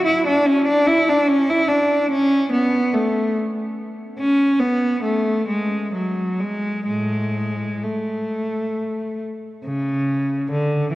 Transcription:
0.05 E4
0.27 D4
0.46 C#4
0.67 D4
0.87 E4
1.09 D4
1.27 C#4
1.50 E4
1.69 D4
2.10 C#4
2.52 B3
2.94 A3
4.19 C#4
4.60 B3
5.03 A3
5.48 G#3
5.94 F#3
6.40 G#3
6.87 A2 G#3
7.84 A3
9.66 C#3
10.50 D3

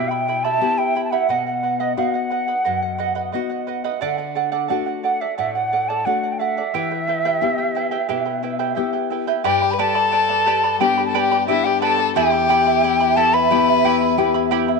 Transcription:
Already playing: B2 E4 G4 E5 G5
0.10 E4 E5 G5 B5
0.28 E4 E5 G5 B5
0.44 E4 G4 E5 G5 A5 B5
0.61 B3 E4 G4 E5 G5 B5
0.78 E4 E5 G5 B5
0.95 E4 E5 G5 B5
1.04 A5
1.11 E4 G4 E5 F#5 G5 B5
1.29 B2 B4 D#5 F#5
1.46 D#5 F#5
1.63 B4 D#5 F#5
1.80 B4 D#5 F#5
1.97 B3 D#4 F#4 B4 D#5 F5 F#5
2.14 D#5 F#5
2.30 B4 D#5 F#5
2.48 B4 D#5 F#5
2.65 F#2 B4 D#5 F#5
2.82 D#5 F#5
2.98 B4 D#5 F#5
3.15 B4 D#5 F#5
3.32 B3 D#4 F#4 B4 D#5 F#5
3.50 D#5 F#5
3.67 B4 D#5 F#5
3.84 B4 D#5 F#5
4.01 D3 A4 D5 F#5
4.18 D5 F#5
4.35 A4 D5 F#5
4.52 A4 D5 F#5
4.68 A3 D4 F#4 A4 D5 F#5
4.86 D5 F#5
5.03 A4 D5 F#5
5.21 A4 D5 E5 F#5
5.38 A2 A4 D5 E5 F#5
5.55 D5 F#5
5.72 A4 D5 F#5
5.89 A4 D5 F#5 A5
6.05 A3 D4 F#4 A4 D5 F#5
6.23 D5 F#5
6.32 G5
6.39 A4 D5 E5 F#5
6.57 A4 D5 F#5
6.74 E3 E4 G4 B4 E5 G5
6.91 E4 B4 G5
7.07 E4 B4 E5 G5
7.25 E4 G4 B4 E5 G5
7.41 B3 E4 G4 B4 E5 G5
7.58 E4 B4 G5
7.75 E4 B4 E5 G5
7.91 E4 G4 B4 E5 G5
8.09 B2 E4 G4 B4 E5 G5
8.25 E4 B4 G5
8.43 E4 B4 E5 G5
8.59 E4 G4 B4 E5 G5
8.75 B3 E4 G4 B4 E5 G5
8.93 E4 B4 G5
9.10 E4 B4 E5 G5
9.27 E4 G4 B4 E5 G5
9.44 G2 G4 B4 D5 G5 B5
9.62 B4 D5 B5
9.71 B4 B5
9.79 G4 A4 B4 D5 G5 A5 B5
9.95 B4 D5 B5
10.12 B4 D5 G5 B5
10.29 B4 D5 B5
10.46 G4 B4 D5 G5 B5
10.64 B4 D5 B5
10.80 B3 D4 G4 B4 D5 G5 B5
10.97 B4 D5 B5
11.06 A4 A5
11.14 G4 B4 D5 G5 A5 B5
11.19 G5
11.31 B4 D5 B5
11.47 B3 D4 E4 G4 B4 D5 E5 G5 B5
11.64 G4 B4 D5 G5 B5
11.82 G4 A4 B4 D5 G5 A5 B5
11.98 B4 D5 B5
12.15 E2 E4 G4 E5 G5 B5
12.32 E4 E5 B5
12.49 E4 G4 E5 G5 B5
12.66 E4 E5 B5
12.83 E4 E5 G5 B5
13.00 E4 E5 B5
13.16 E4 G4 A4 E5 G5 A5 B5
13.34 E4 B4 E5 B5
13.51 B3 E4 G4 E5 G5 B5
13.68 E4 E5 B5
13.84 E4 G4 E5 G5 B5
14.02 E4 E5 B5
14.18 B3 E4 G4 E5 G5 B5
14.34 E4 E5 B5
14.51 E4 G4 E5 G5 B5
14.68 E4 E5 B5

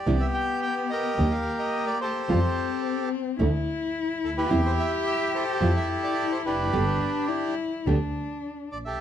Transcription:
Already playing: G4 D5
0.06 C2 C3 E3 G3 B3 D4 E4
0.20 E5
0.34 G5
0.62 G5
0.90 G4 A#4 D#5
1.18 D#2 D#3 G3 A#3 D4 G4
1.31 F5
1.59 D#5
1.86 D5
2.01 G4 A4 C5
2.28 F2 F3 G3 C4 F4
3.39 D2 D3 A3 D4 E4
4.23 D2 A4
4.38 E4 G4 B4
4.49 E2 C3 E3 G3 C4 E4 G4
4.66 C5
4.80 E5
5.07 E5
5.35 G4 A4 C5
5.61 F2 F3 G3 C4 E4 F4
5.76 E5
6.04 D5
6.32 C5
6.45 F1 D4 G4 B4
6.72 G1 B2 D3 G3 B3 D4 G4
7.29 E4
7.86 D2 B2 D3 G3 B3 D4 G4
8.72 A#1 D5
8.85 G4 A4 E5

